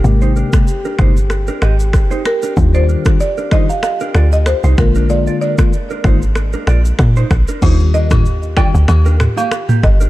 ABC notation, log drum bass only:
X:1
M:4/4
L:1/16
Q:"Swing 16ths" 1/4=95
K:Eb
V:1 name="Log drum bass" clef=bass
A,,,3 z3 G,,,4 A,,,3 z3 | E,,3 z6 z D,,3 C,, B,,,2- | B,,,2 z4 A,,,4 B,,,2 B,,2 B,,, z | E,,6- E,, D,, E,,3 z3 G,,,2 |]